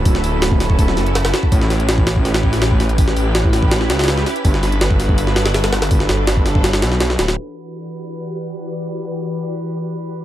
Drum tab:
HH |o---o---o---o---o---o-x-o-o-o---|o---o-x-o---o---o-o---o-o---o-x-|o---o---o---o---o---o-ooo---o-x-|o---o-x-o---o---o---o-o-o-o-o-o-|
SD |--o-----o---o-----o-o---o-o-o---|--o-o---o---o---o-o---o-o---o---|--o-----o---o---o-o-o-ooo-o-o---|--o-o---o---o-----o-o-o-o-o-o-o-|
BD |o---------o---o-o-------------o-|o---------o---o-----o-----o-----|o---------o---o-----------------|o---------o---o-----------------|

HH |o---o---o---o---o-o-o---o---o-o-|--------------------------------|--------------------------------|
SD |--o-o---o---o---o-o-o-o-o-o-o-o-|--------------------------------|--------------------------------|
BD |o---------o---o-----------------|--------------------------------|--------------------------------|